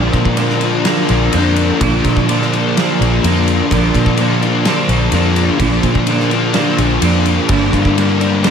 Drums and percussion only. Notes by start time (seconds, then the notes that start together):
0.13 kick, ride
0.25 kick
0.37 ride
0.50 snare
0.61 ride
0.85 snare, ride
1.09 ride
1.33 ride
1.56 ride
1.81 kick, ride
2.04 kick, ride
2.17 kick
2.29 ride
2.41 snare
2.53 ride
2.77 snare, ride
3.02 ride
3.24 ride
3.48 ride
3.71 kick, ride
3.95 kick, ride
4.06 kick
4.17 ride
4.42 ride
4.65 snare, ride
4.89 ride
5.12 ride
5.36 ride
5.60 kick, ride
5.83 kick, ride
5.95 kick
6.07 ride
6.20 snare
6.31 ride
6.54 snare, ride
6.78 ride
7.02 ride
7.26 ride
7.49 kick, ride
7.73 kick, ride
7.85 kick
7.98 ride
8.21 ride
8.44 snare, ride